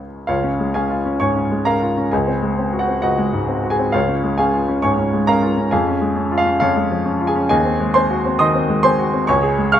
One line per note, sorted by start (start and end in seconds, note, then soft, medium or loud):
0.00 0.21 C#2 medium
0.00 0.22 G#3 soft
0.00 0.23 C#4 soft
0.00 0.23 F4 soft
0.00 0.28 C#5 soft
0.00 0.31 D#5 medium
0.00 0.31 C#6 medium
0.00 0.31 D#6 medium
0.27 1.18 C#2 medium
0.27 0.72 F4 medium
0.27 0.72 C#5 medium
0.27 0.74 F5 medium
0.44 0.69 C#4 soft
0.60 0.84 G#3 soft
0.74 1.00 C#4 soft
0.74 1.18 G#4 soft
0.74 1.18 F5 medium
0.74 1.19 G#5 medium
0.90 1.15 F4 soft
1.05 1.30 C#4 soft
1.20 1.45 G#2 soft
1.20 1.63 C#5 medium
1.20 1.63 G#5 medium
1.20 1.65 C#6 medium
1.36 1.60 C#4 soft
1.51 1.75 G#3 soft
1.65 1.91 C#4 soft
1.65 2.09 A#4 medium
1.65 2.09 F5 medium
1.65 2.11 A#5 medium
1.82 2.06 F4 soft
1.97 2.12 C#4 soft
2.11 3.01 C#2 medium
2.11 2.77 G#4 soft
2.11 2.77 D#5 soft
2.11 2.80 G#5 medium
2.27 2.51 C4 soft
2.43 2.67 G#3 soft
2.58 2.82 C4 soft
2.73 2.79 F#4 soft
2.79 3.01 F#4 medium
2.79 3.00 F#5 medium
2.88 3.12 C4 soft
3.02 3.91 C#2 medium
3.02 3.62 F#4 medium
3.02 3.67 D#5 medium
3.02 3.70 F#5 medium
3.18 3.42 G#3 medium
3.33 3.57 G#2 soft
3.48 3.72 C4 soft
3.63 3.87 F#4 medium
3.70 3.92 G#4 medium
3.70 3.93 G#5 medium
3.79 3.94 C4 medium
3.92 4.81 C#2 medium
3.92 4.36 F4 medium
3.92 4.36 C#5 medium
3.92 4.38 F5 medium
4.09 4.33 C#4 soft
4.24 4.48 G#3 soft
4.38 4.63 C#4 soft
4.38 4.80 G#4 medium
4.38 4.81 F5 medium
4.38 4.82 G#5 medium
4.53 4.77 F4 soft
4.68 4.92 C#4 medium
4.82 5.07 G#2 soft
4.82 5.25 C#5 medium
4.82 5.25 G#5 medium
4.82 5.27 C#6 medium
4.98 5.22 C#4 medium
5.14 5.37 G#3 soft
5.27 5.52 C#4 medium
5.27 5.69 A#4 medium
5.27 5.69 F5 medium
5.27 5.72 A#5 medium
5.42 5.66 F4 medium
5.57 5.72 C#4 medium
5.71 6.59 F2 medium
5.71 6.35 G#4 medium
5.71 6.35 F5 medium
5.71 6.39 G#5 medium
5.87 6.11 C#4 medium
6.01 6.25 G#3 soft
6.16 6.40 C#4 medium
6.31 6.38 F4 medium
6.38 6.60 F4 medium
6.38 6.58 F5 medium
6.46 6.70 C#4 medium
6.60 7.48 F2 medium
6.60 7.19 F4 medium
6.60 7.24 C#5 medium
6.60 7.28 F5 medium
6.76 7.00 G#3 medium
6.91 7.15 F3 medium
7.06 7.30 C#4 medium
7.21 7.44 F4 medium
7.27 7.49 G#4 medium
7.27 7.48 G#5 medium
7.36 7.50 C#4 medium
7.49 8.37 D#2 medium
7.49 7.92 G#4 medium
7.49 7.92 D#5 medium
7.49 7.94 G#5 medium
7.65 7.89 C4 medium
7.80 8.04 G#3 medium
7.94 8.19 C4 medium
7.94 8.37 C5 medium
7.94 8.37 G#5 medium
7.94 8.39 C6 medium
8.10 8.34 F#4 medium
8.25 8.49 C4 medium
8.39 8.64 D#3 medium
8.39 8.81 D#5 medium
8.39 8.81 C6 medium
8.39 8.84 D#6 medium
8.55 8.78 C4 medium
8.69 8.93 G#3 medium
8.83 9.08 C4 medium
8.83 9.25 C5 medium
8.83 9.25 G#5 medium
8.83 9.28 C6 medium
8.99 9.22 F#4 medium
9.13 9.28 C4 medium
9.27 9.80 C#2 medium
9.27 9.70 C#5 medium
9.27 9.70 G#5 medium
9.27 9.72 C#6 medium
9.43 9.67 G#4 medium
9.58 9.80 G#3 medium
9.72 9.80 G#4 medium
9.72 9.80 F5 medium
9.72 9.80 C#6 medium
9.72 9.80 F6 medium